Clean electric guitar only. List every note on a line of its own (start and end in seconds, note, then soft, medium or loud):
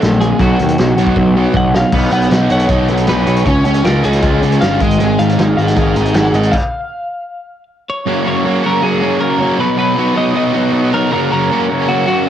0.00 0.20 A4 medium
0.20 0.40 G#4 medium
0.41 1.51 F#4 medium
1.57 1.75 F#5 medium
1.77 2.12 F5 loud
2.13 2.51 F#5 loud
2.52 2.70 F#5 medium
2.70 3.09 D#5 medium
3.09 3.46 B4 medium
3.46 3.85 C#5 medium
3.85 4.05 A#4 medium
4.05 4.64 G#4 medium
4.61 4.82 F5 medium
4.82 5.19 D#5 loud
5.19 5.56 F5 medium
5.57 5.68 F5 medium
5.68 5.78 F#5 medium
5.78 5.97 F5 loud
5.97 6.14 D#5 medium
6.14 6.51 F#5 medium
6.52 7.63 F5 medium
7.90 8.26 C#5 medium
8.27 8.66 C#5 medium
8.66 8.84 A#4 medium
8.83 9.22 G#4 medium
9.21 9.60 A#4 medium
9.60 9.77 B4 medium
9.79 10.17 B4 loud
10.18 10.36 D#5 loud
10.37 10.89 D#5 loud
10.94 11.11 A#4 medium
11.12 11.31 A#4 medium
11.32 11.90 A#4 medium
11.89 12.06 F#4 loud
12.08 12.28 F#4 loud